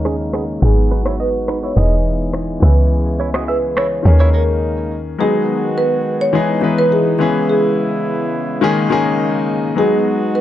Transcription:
0.00 0.58 D#2 medium
0.00 0.60 C#3 medium
0.00 0.59 D#3 medium
0.00 1.73 G#3 medium
0.00 0.60 A#3 medium
0.00 0.61 A#3 medium
0.00 0.61 C#4 medium
0.00 0.62 D#4 medium
0.00 0.62 G#4 medium
0.05 0.15 C#4 medium
0.05 0.15 G#4 medium
0.05 finger snap medium
0.05 cross-stick medium
0.34 0.44 B3 medium
0.34 0.43 G#4 medium
0.34 finger snap medium
0.34 cross-stick medium
0.60 1.73 G#1 medium
0.60 1.73 F#3 medium
0.60 1.74 B3 medium
0.60 2.61 B3 medium
0.60 2.61 D#4 medium
0.60 1.75 D#4 medium
0.60 1.76 F#4 medium
0.60 1.22 G#4 medium
0.65 1.76 G#4 medium
0.91 1.01 D#4 medium
0.91 1.00 B4 medium
1.06 1.15 E4 medium
1.06 1.14 C#5 medium
1.06 finger snap medium
1.06 cross-stick loud
1.20 1.29 F#4 medium
1.20 1.61 B4 medium
1.20 1.29 D#5 medium
1.48 1.58 D#4 medium
1.48 1.57 B4 medium
1.48 finger snap medium
1.48 cross-stick medium
1.63 1.72 E4 medium
1.63 1.72 C#5 medium
1.63 1.70 C#5 loud
1.75 2.59 E1 medium
1.75 2.58 E3 medium
1.75 4.03 E3 medium
1.75 4.03 G#3 medium
1.75 2.60 B3 medium
1.75 2.63 D#4 medium
1.75 2.63 G#4 medium
1.75 1.95 G#4 medium
1.75 1.94 D#5 medium
1.75 2.30 D#5 medium
2.33 finger snap medium
2.33 cross-stick medium
2.60 4.01 C#2 medium
2.60 5.03 C#3 medium
2.60 4.01 E3 medium
2.60 4.02 B3 medium
2.60 4.04 B3 medium
2.60 4.03 C#4 medium
2.60 2.72 E4 medium
2.60 2.71 B4 medium
2.60 3.48 B4 medium
2.65 4.04 G#4 medium
3.20 3.29 E4 medium
3.20 3.29 C#5 medium
3.34 3.43 F#4 medium
3.34 3.43 D#5 medium
3.34 finger snap medium
3.34 cross-stick loud
3.48 3.58 G#4 medium
3.48 3.78 B4 medium
3.48 3.57 E5 medium
3.77 3.86 E4 medium
3.77 3.86 C#5 medium
3.77 4.05 C#5 loud
3.77 finger snap medium
3.77 cross-stick medium
4.03 5.16 D#2 medium
4.03 5.16 D#3 medium
4.03 5.03 G#3 medium
4.03 5.17 A#3 medium
4.03 5.03 A#3 medium
4.03 5.18 C#4 medium
4.03 5.03 D#4 medium
4.03 4.32 C#5 loud
4.08 5.19 G#4 medium
4.20 4.29 E4 medium
4.20 4.28 C#5 medium
4.34 4.43 C#4 medium
4.34 4.43 A#4 medium
4.34 4.87 A#4 medium
5.18 6.33 D#3 medium
5.18 5.97 F#3 medium
5.18 5.98 G#3 medium
5.18 10.41 G#3 medium
5.18 5.98 B3 medium
5.18 6.33 B3 medium
5.18 5.98 D#4 medium
5.18 6.33 F#4 medium
5.18 5.79 G#4 loud
5.18 5.99 G#4 medium
5.78 6.22 B4 loud
6.21 6.80 C#5 loud
6.33 6.56 E3 medium
6.33 7.19 E3 medium
6.33 6.57 G#3 medium
6.33 8.60 B3 medium
6.33 6.57 B3 medium
6.33 7.19 D#4 medium
6.33 6.57 D#4 medium
6.33 6.58 G#4 medium
6.61 7.17 E3 medium
6.61 7.18 G#3 medium
6.61 7.18 B3 medium
6.61 7.20 D#4 medium
6.61 7.20 B4 medium
6.78 6.92 B4 loud
6.92 7.48 G#4 medium
7.19 9.74 C#3 medium
7.19 8.11 E3 medium
7.19 8.11 G#3 medium
7.19 8.11 B3 medium
7.19 8.12 C#4 medium
7.19 8.61 E4 medium
7.19 8.12 G#4 medium
7.50 9.45 G#4 medium
8.61 8.85 D#3 loud
8.61 8.85 G#3 medium
8.61 8.86 A#3 medium
8.61 9.76 A#3 medium
8.61 8.86 C#4 medium
8.61 9.75 D#4 medium
8.61 8.86 G#4 loud
8.90 9.49 D#3 medium
8.90 9.49 G#3 medium
8.90 9.50 A#3 medium
8.90 9.50 C#4 medium
8.90 9.50 G#4 loud
9.75 10.41 F#3 medium
9.75 10.41 G#3 medium
9.75 10.41 B3 medium
9.75 10.41 D#4 medium
9.75 10.41 F#4 medium
9.75 10.41 G#4 medium
9.75 10.36 G#4 medium
10.35 10.41 B4 loud

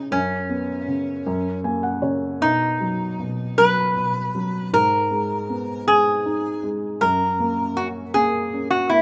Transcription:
0.00 0.12 C#3 medium
0.00 0.13 G#3 medium
0.00 0.13 C#4 medium
0.11 1.22 F#2 medium
0.11 1.60 C#4 medium
0.49 1.23 B3 soft
0.88 1.24 C#3 soft
1.26 2.38 F#2 medium
1.64 2.39 A#3 soft
1.64 1.82 G#5 medium
1.83 2.01 F#5 medium
2.02 2.39 C#3 soft
2.02 2.38 C#5 medium
2.41 3.18 B2 medium
2.41 3.61 D#4 medium
2.81 3.57 F#3 soft
3.19 3.95 B2 soft
3.58 4.33 F#3 medium
3.58 4.73 B4 medium
3.96 4.71 B2 soft
4.35 4.72 F#3 soft
4.73 6.96 G#2 medium
4.73 5.87 A#4 medium
5.11 5.85 G#3 soft
5.49 6.97 B3 soft
5.87 6.62 G#3 medium
5.87 6.68 G#4 medium
6.26 6.99 D#4 soft
6.63 7.00 G#3 soft
7.01 9.02 F#2 medium
7.01 7.79 A#4 medium
7.40 8.14 A#3 medium
7.77 8.52 C#4 medium
7.77 7.87 F#4 medium
8.14 8.90 A#3 medium
8.14 8.70 G#4 medium
8.53 9.02 C#4 medium
8.71 8.90 F#4 medium
8.90 9.02 A#3 soft
8.90 9.02 E4 medium

